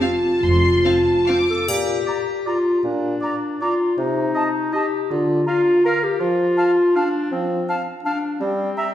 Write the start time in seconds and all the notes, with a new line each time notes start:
0.01 C4 F4 F5 A5
0.42 F1 F2 C6
0.85 C4 F5 A5
1.28 C4 F5 D6
1.50 A4
1.68 A#2 G4, triangle
2.06 D5 A#5
2.46 F4 D5 A#5
2.84 A#2 D4
3.21 D5 A#5
3.61 F4 D5 A#5
3.97 C3 D#4
4.35 D#5 A5
4.72 G4 D#5 A5
5.11 D3 F4
5.46 F4 F5 A#5
5.84 A#4 F5 A#5
6.04 G4
6.20 F3 F4
6.57 F5 A5
6.96 D4 F5 A5
7.32 F3 C4
7.68 F5 A5
8.04 D4 F5 A5
8.40 G3 C4
8.77 E5 A#5